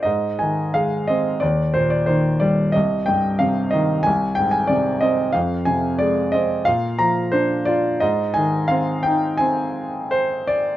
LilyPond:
<<
  \new Staff \with { instrumentName = "Grand piano" } { \time 4/4 \key aes \lydian \tempo 4 = 90 ees''8 aes''8 f''8 ees''8 d''8 c''16 d''16 c''8 d''8 | ees''8 g''8 f''8 ees''8 aes''8 g''16 aes''16 d''8 ees''8 | f''8 aes''8 d''8 ees''8 f''8 bes''8 c''8 d''8 | ees''8 aes''8 f''8 g''8 aes''4 c''8 d''8 | }
  \new Staff \with { instrumentName = "Grand piano" } { \clef bass \time 4/4 \key aes \lydian aes,8 ees8 aes8 c'8 ees,8 bes,8 ees8 g8 | c,8 g,8 c8 ees8 c,8 aes,8 c8 c'8 | f,8 c8 aes8 c'8 bes,8 f8 d'8 f'8 | aes,8 ees8 c'8 ees'8 c'2 | }
>>